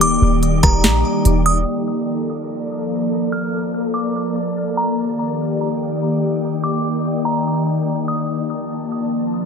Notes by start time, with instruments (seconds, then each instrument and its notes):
Already playing: 808-style bass D#1, ambient pad D#3 A#3 G4 D5, synth texture G3 D#4 D5
0.01 synth bell D6, closed hi-hat
0.22 808-style bass D#1
0.43 closed hi-hat
0.63 808-style bass D#1, synth bell A#5, kick, cross-stick, closed hi-hat
0.84 808-style bass A#1, snare, closed hi-hat
1.25 808-style bass D#1, closed hi-hat
1.46 synth bell D#6
1.67 ambient pad F3 A#3 A4 D5, synth texture A#3 A4 D5
3.32 synth bell F6
3.94 synth bell D6
4.77 synth bell A#5
4.98 ambient pad D#3 G4, synth texture D#4 G5
6.64 synth bell D6
7.25 synth bell A#5
8.08 synth bell D#6
8.28 ambient pad F3 A5, synth texture D4 A#4 A5